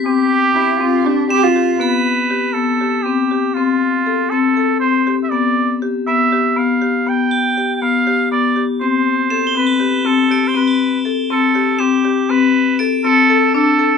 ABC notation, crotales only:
X:1
M:7/8
L:1/16
Q:1/4=120
K:Gmix
V:1 name="Crotales"
b'2 z8 e''4 | b''6- b'' z6 z | z12 z2 | z12 z2 |
z2 a''6- a'' z4 z | z4 e'' g'' a''6 d'' g'' | a''6- a'' z3 e''4- | e''2 z2 d''6- d'' z3 |]